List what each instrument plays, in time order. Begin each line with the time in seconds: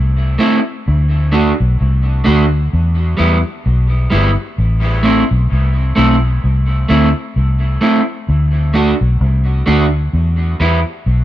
Already playing: fingered electric bass C2
0.39 clean electric guitar A3 C4 E4
0.88 fingered electric bass D2
1.32 clean electric guitar A3 D4 F#4
1.60 fingered electric bass B1
1.81 fingered electric bass C2
2.24 fingered electric bass D2, clean electric guitar A3 D4 F#4
2.73 fingered electric bass E2
3.17 fingered electric bass E2, clean electric guitar G3 B3 E4
3.66 fingered electric bass B1
4.10 fingered electric bass G1, clean electric guitar G3 B3 E4
4.58 fingered electric bass A1
5.03 clean electric guitar A3 C4 E4
5.31 fingered electric bass B1
5.52 fingered electric bass C2
5.96 fingered electric bass B1, clean electric guitar A3 C4 E4
6.44 fingered electric bass C2
6.89 fingered electric bass D2, clean electric guitar A3 C4 E4
7.36 fingered electric bass C2
7.81 clean electric guitar A3 C4 E4
8.29 fingered electric bass D2
8.74 clean electric guitar A3 D4 F#4
9.01 fingered electric bass B1
9.21 fingered electric bass C2
9.66 fingered electric bass D2, clean electric guitar A3 D4 F#4
10.13 fingered electric bass E2
10.60 fingered electric bass E2, clean electric guitar G3 B3 E4
11.06 fingered electric bass B1